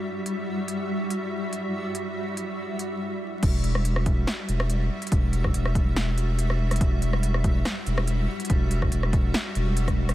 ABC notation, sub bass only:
X:1
M:4/4
L:1/8
Q:"Swing 16ths" 1/4=142
K:Em
V:1 name="Sub bass" clef=bass
z8 | z8 | E,,,4 z E,,,2 z | E,,,2 E,,,6 |
E,,,4 z E,,,2 z | E,,,2 E,,,2 z E,,,3 |]